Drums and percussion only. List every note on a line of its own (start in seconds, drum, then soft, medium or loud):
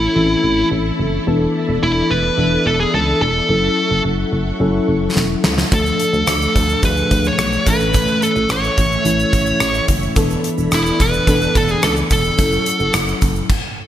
5.16 snare soft
5.44 snare medium
5.58 snare medium
5.72 kick loud
5.72 closed hi-hat medium
5.72 shaker medium
5.86 shaker soft
6.00 closed hi-hat medium
6.00 shaker soft
6.14 shaker soft
6.27 cross-stick medium
6.27 closed hi-hat medium
6.27 shaker medium
6.42 shaker soft
6.56 kick medium
6.56 closed hi-hat medium
6.56 shaker soft
6.69 shaker soft
6.83 kick medium
6.83 closed hi-hat medium
6.83 shaker medium
6.97 shaker soft
7.11 kick medium
7.11 closed hi-hat medium
7.11 shaker soft
7.24 shaker soft
7.38 cross-stick loud
7.38 closed hi-hat medium
7.38 shaker medium
7.53 shaker soft
7.66 kick medium
7.66 closed hi-hat medium
7.66 shaker soft
7.80 shaker soft
7.93 kick loud
7.93 closed hi-hat medium
7.93 shaker medium
8.08 shaker soft
8.22 closed hi-hat medium
8.22 shaker soft
8.36 shaker soft
8.49 cross-stick loud
8.49 closed hi-hat medium
8.49 shaker medium
8.64 shaker soft
8.78 kick medium
8.78 closed hi-hat medium
8.78 shaker soft
8.92 shaker soft
9.05 closed hi-hat medium
9.05 shaker medium
9.19 shaker soft
9.33 kick medium
9.33 closed hi-hat medium
9.33 shaker soft
9.46 shaker soft
9.60 cross-stick loud
9.60 closed hi-hat medium
9.60 shaker medium
9.74 shaker soft
9.88 kick medium
9.88 closed hi-hat medium
9.88 shaker soft
10.03 shaker soft
10.16 kick loud
10.16 closed hi-hat medium
10.16 shaker medium
10.30 shaker soft
10.44 closed hi-hat medium
10.44 shaker soft
10.58 shaker soft
10.71 cross-stick medium
10.71 closed hi-hat medium
10.71 shaker medium
10.86 shaker soft
11.00 kick medium
11.00 closed hi-hat medium
11.00 shaker soft
11.14 shaker soft
11.27 kick medium
11.27 closed hi-hat medium
11.27 shaker medium
11.41 shaker soft
11.55 kick medium
11.55 closed hi-hat medium
11.55 shaker soft
11.68 shaker soft
11.82 cross-stick loud
11.82 closed hi-hat medium
11.82 shaker medium
11.96 shaker soft
12.10 kick medium
12.10 closed hi-hat medium
12.10 shaker soft
12.24 shaker soft
12.38 kick loud
12.38 closed hi-hat medium
12.38 shaker medium
12.52 shaker soft
12.66 closed hi-hat medium
12.66 shaker soft
12.80 shaker soft
12.93 cross-stick loud
12.93 closed hi-hat medium
12.93 shaker medium
13.08 shaker soft
13.21 kick medium
13.21 closed hi-hat medium
13.21 shaker soft
13.35 shaker soft
13.50 kick medium
13.50 crash medium